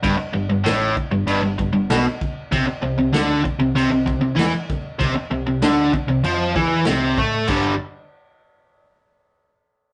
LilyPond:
<<
  \new Staff \with { instrumentName = "Overdriven electric guitar" } { \clef bass \time 4/4 \key g \mixolydian \tempo 4 = 96 g,16 r16 g,16 g,16 a,8 r16 g,16 g,16 g,16 g,16 g,16 b,16 r8. | c16 r16 c16 c16 d8 r16 c16 c16 c16 c16 c16 e16 r8. | c16 r16 c16 c16 d8 r16 c16 f8 e8 c8 a8 | <g, d g>8 r2. r8 | }
  \new Staff \with { instrumentName = "Picked electric bass" } { \clef bass \time 4/4 \key g \mixolydian g,,16 r16 g,,16 g,,16 a,,8 r16 g,,16 g,,16 g,,16 g,,16 g,,16 b,,16 r8. | c,16 r16 c,16 c,16 d,8 r16 c,16 c,16 c,16 c,16 c,16 e,16 r8. | c,16 r16 c,16 c,16 d,8 r16 c,16 f,8 e,8 c,8 a,8 | g,,8 r2. r8 | }
  \new DrumStaff \with { instrumentName = "Drums" } \drummode { \time 4/4 <cymc bd>4 <cymc sn>8 bd8 cymc8 bd8 <cymc sn>8 bd8 | <cymc bd>4 <cymc sn>8 bd8 cymc8 bd8 <cymc sn>8 bd8 | <cymc bd>4 <cymc sn>8 bd8 cymc8 bd8 <cymc sn>8 bd8 | <cymc bd>4 r4 r4 r4 | }
>>